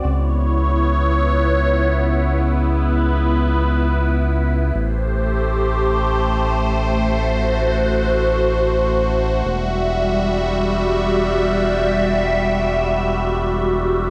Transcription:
0, 0, Header, 1, 3, 480
1, 0, Start_track
1, 0, Tempo, 500000
1, 13537, End_track
2, 0, Start_track
2, 0, Title_t, "Analog synth pad"
2, 0, Program_c, 0, 89
2, 41, Note_on_c, 0, 59, 85
2, 41, Note_on_c, 0, 64, 73
2, 41, Note_on_c, 0, 73, 96
2, 2277, Note_off_c, 0, 73, 0
2, 2300, Note_on_c, 0, 71, 87
2, 4520, Note_off_c, 0, 59, 0
2, 4520, Note_off_c, 0, 64, 0
2, 4536, Note_off_c, 0, 71, 0
2, 4559, Note_on_c, 0, 57, 80
2, 4559, Note_on_c, 0, 67, 78
2, 4559, Note_on_c, 0, 72, 95
2, 6795, Note_off_c, 0, 67, 0
2, 6816, Note_on_c, 0, 66, 78
2, 9038, Note_off_c, 0, 57, 0
2, 9038, Note_off_c, 0, 72, 0
2, 9076, Note_on_c, 0, 55, 82
2, 9076, Note_on_c, 0, 76, 94
2, 13537, Note_off_c, 0, 55, 0
2, 13537, Note_off_c, 0, 66, 0
2, 13537, Note_off_c, 0, 76, 0
2, 13537, End_track
3, 0, Start_track
3, 0, Title_t, "Analog synth bass"
3, 0, Program_c, 1, 38
3, 41, Note_on_c, 1, 37, 83
3, 4530, Note_off_c, 1, 37, 0
3, 4558, Note_on_c, 1, 33, 87
3, 9048, Note_off_c, 1, 33, 0
3, 9076, Note_on_c, 1, 28, 88
3, 13537, Note_off_c, 1, 28, 0
3, 13537, End_track
0, 0, End_of_file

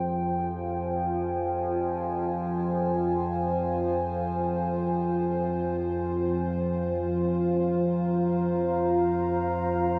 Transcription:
0, 0, Header, 1, 3, 480
1, 0, Start_track
1, 0, Key_signature, -4, "minor"
1, 0, Tempo, 500000
1, 9592, End_track
2, 0, Start_track
2, 0, Title_t, "Analog synth pad"
2, 0, Program_c, 0, 89
2, 0, Note_on_c, 0, 65, 80
2, 0, Note_on_c, 0, 68, 88
2, 0, Note_on_c, 0, 72, 76
2, 0, Note_on_c, 0, 79, 88
2, 42, Note_on_c, 0, 80, 78
2, 185, Note_off_c, 0, 68, 0
2, 6268, Note_on_c, 0, 77, 90
2, 6597, Note_off_c, 0, 79, 0
2, 7321, Note_on_c, 0, 82, 75
2, 7652, Note_off_c, 0, 80, 0
2, 9592, Note_off_c, 0, 65, 0
2, 9592, Note_off_c, 0, 72, 0
2, 9592, Note_off_c, 0, 77, 0
2, 9592, Note_off_c, 0, 82, 0
2, 9592, End_track
3, 0, Start_track
3, 0, Title_t, "Synth drone"
3, 0, Program_c, 1, 95
3, 0, Note_on_c, 1, 41, 83
3, 0, Note_on_c, 1, 53, 75
3, 9592, Note_off_c, 1, 41, 0
3, 9592, Note_off_c, 1, 53, 0
3, 9592, End_track
0, 0, End_of_file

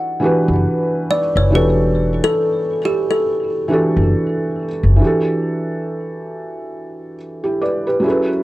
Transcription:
0, 0, Header, 1, 4, 480
1, 0, Start_track
1, 0, Tempo, 869565
1, 841, Time_signature, 4, 2, 24, 8
1, 4653, End_track
2, 0, Start_track
2, 0, Title_t, "Kalimba"
2, 0, Program_c, 0, 108
2, 0, Note_on_c, 0, 78, 105
2, 586, Note_off_c, 0, 78, 0
2, 611, Note_on_c, 0, 74, 94
2, 738, Note_off_c, 0, 74, 0
2, 756, Note_on_c, 0, 73, 84
2, 850, Note_off_c, 0, 73, 0
2, 856, Note_on_c, 0, 71, 92
2, 1208, Note_off_c, 0, 71, 0
2, 1236, Note_on_c, 0, 69, 91
2, 1575, Note_on_c, 0, 67, 84
2, 1578, Note_off_c, 0, 69, 0
2, 1714, Note_off_c, 0, 67, 0
2, 1715, Note_on_c, 0, 69, 75
2, 2265, Note_off_c, 0, 69, 0
2, 4653, End_track
3, 0, Start_track
3, 0, Title_t, "Felt piano"
3, 0, Program_c, 1, 0
3, 0, Control_c, 1, 64, 127
3, 0, Note_on_c, 1, 52, 65
3, 0, Note_on_c, 1, 62, 61
3, 0, Note_on_c, 1, 66, 64
3, 0, Note_on_c, 1, 67, 61
3, 0, Note_on_c, 1, 69, 73
3, 109, Note_off_c, 1, 52, 0
3, 109, Note_on_c, 1, 52, 72
3, 115, Note_off_c, 1, 62, 0
3, 115, Note_on_c, 1, 62, 64
3, 122, Note_off_c, 1, 66, 0
3, 122, Note_on_c, 1, 66, 65
3, 131, Note_off_c, 1, 67, 0
3, 131, Note_on_c, 1, 67, 65
3, 140, Note_on_c, 1, 71, 82
3, 647, Note_off_c, 1, 52, 0
3, 650, Note_off_c, 1, 62, 0
3, 654, Note_off_c, 1, 66, 0
3, 658, Note_off_c, 1, 67, 0
3, 663, Note_off_c, 1, 71, 0
3, 830, Note_on_c, 1, 52, 67
3, 837, Note_on_c, 1, 62, 64
3, 844, Note_on_c, 1, 66, 63
3, 850, Note_on_c, 1, 67, 65
3, 858, Note_off_c, 1, 69, 0
3, 858, Note_on_c, 1, 69, 76
3, 1538, Note_off_c, 1, 52, 0
3, 1542, Note_off_c, 1, 62, 0
3, 1545, Note_off_c, 1, 66, 0
3, 1548, Note_off_c, 1, 67, 0
3, 1552, Note_off_c, 1, 69, 0
3, 2031, Note_on_c, 1, 52, 70
3, 2038, Note_on_c, 1, 62, 61
3, 2045, Note_on_c, 1, 66, 63
3, 2054, Note_on_c, 1, 67, 63
3, 2060, Note_on_c, 1, 69, 80
3, 2568, Note_off_c, 1, 52, 0
3, 2572, Note_off_c, 1, 62, 0
3, 2575, Note_off_c, 1, 66, 0
3, 2580, Note_off_c, 1, 67, 0
3, 2583, Note_off_c, 1, 69, 0
3, 2739, Note_on_c, 1, 52, 64
3, 2754, Note_on_c, 1, 62, 57
3, 2767, Control_c, 1, 64, 0
3, 2768, Note_on_c, 1, 66, 57
3, 2783, Note_on_c, 1, 67, 59
3, 2797, Note_on_c, 1, 69, 76
3, 2862, Control_c, 1, 64, 127
3, 3943, Note_off_c, 1, 66, 0
3, 3950, Note_off_c, 1, 67, 0
3, 3957, Note_off_c, 1, 69, 0
3, 4104, Note_on_c, 1, 67, 54
3, 4110, Note_on_c, 1, 64, 49
3, 4197, Note_off_c, 1, 67, 0
3, 4200, Note_off_c, 1, 64, 0
3, 4203, Note_on_c, 1, 74, 62
3, 4206, Note_on_c, 1, 71, 51
3, 4334, Note_off_c, 1, 71, 0
3, 4337, Note_off_c, 1, 74, 0
3, 4343, Note_on_c, 1, 71, 59
3, 4348, Note_on_c, 1, 67, 48
3, 4408, Note_off_c, 1, 52, 0
3, 4415, Note_on_c, 1, 54, 73
3, 4416, Note_off_c, 1, 62, 0
3, 4426, Note_on_c, 1, 61, 62
3, 4437, Note_on_c, 1, 64, 63
3, 4447, Note_on_c, 1, 68, 62
3, 4448, Control_c, 1, 64, 0
3, 4461, Note_on_c, 1, 69, 64
3, 4464, Note_off_c, 1, 71, 0
3, 4472, Note_on_c, 1, 71, 77
3, 4528, Control_c, 1, 64, 127
3, 4573, Note_off_c, 1, 67, 0
3, 4653, Note_off_c, 1, 54, 0
3, 4653, Note_off_c, 1, 61, 0
3, 4653, Note_off_c, 1, 64, 0
3, 4653, Note_off_c, 1, 68, 0
3, 4653, Note_off_c, 1, 69, 0
3, 4653, Note_off_c, 1, 71, 0
3, 4653, End_track
4, 0, Start_track
4, 0, Title_t, "Upright bass"
4, 0, Program_c, 2, 32
4, 267, Note_on_c, 2, 30, 88
4, 355, Note_off_c, 2, 30, 0
4, 749, Note_on_c, 2, 30, 82
4, 843, Note_off_c, 2, 30, 0
4, 843, Note_on_c, 2, 28, 94
4, 1202, Note_off_c, 2, 28, 0
4, 2188, Note_on_c, 2, 30, 83
4, 2275, Note_off_c, 2, 30, 0
4, 2668, Note_on_c, 2, 30, 83
4, 2755, Note_off_c, 2, 30, 0
4, 4653, End_track
0, 0, End_of_file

